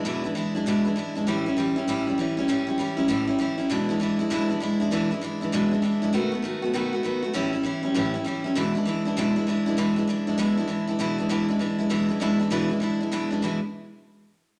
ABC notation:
X:1
M:4/4
L:1/8
Q:"Swing" 1/4=197
K:Emix
V:1 name="Steel-string acoustic guitar" clef=bass
[E,,B,,E,G,DE] [E,G,DE] [E,G,DE] [E,G,DE] [E,,B,,E,G,DE] [E,G,DE] [E,G,DE] [E,G,DE] | [A,,E,=G,CE] [G,CE] [E,G,CE] [G,CE] [A,,E,G,CE] [G,CE] [E,G,CE] [G,CE] | [A,,E,=G,CE] [G,CE] [E,G,CE] [G,CE] [A,,E,G,CE] [G,CE] [E,G,CE] [G,CE] | [E,,B,,E,G,DE] [E,G,DE] [E,G,DE] [E,G,DE] [E,,B,,E,G,DE] [E,G,DE] [E,G,DE] [E,G,DE] |
[E,,B,,E,G,DE] [E,G,DE] [E,G,DE] [E,G,DE] [E,,B,,E,G,DE] [E,G,DE] [E,G,DE] [E,G,DE] | [B,,^D,A,B,F] [A,B,F] [D,A,B,F] [A,B,F] [B,,D,A,B,F] [A,B,F] [D,A,B,F] [A,B,F] | [A,,E,=G,CE] [G,CE] [E,G,CE] [G,CE] [A,,E,G,CE] [G,CE] [E,G,CE] [G,CE] | [E,,B,,E,G,DE] [E,G,DE] [E,G,DE] [E,G,DE] [E,,B,,E,G,DE] [E,G,DE] [E,G,DE] [E,G,DE] |
[E,,B,,E,G,DE] [E,G,DE] [E,G,DE] [E,G,DE] [E,,B,,E,G,DE] [E,G,DE] [E,G,DE] [E,G,DE] | [E,,B,,E,G,DE] [E,G,DE] [E,,B,,E,G,DE] [E,G,DE] [E,G,DE] [E,G,DE] [E,,B,,E,G,DE] [E,G,DE] | [E,,B,,E,G,DE] [E,G,DE] [E,,B,,E,G,DE] [E,G,DE] [E,G,DE] [E,G,DE] [E,,B,,E,G,DE] [E,G,DE] | [E,,B,,E,G,DE] z6 z |]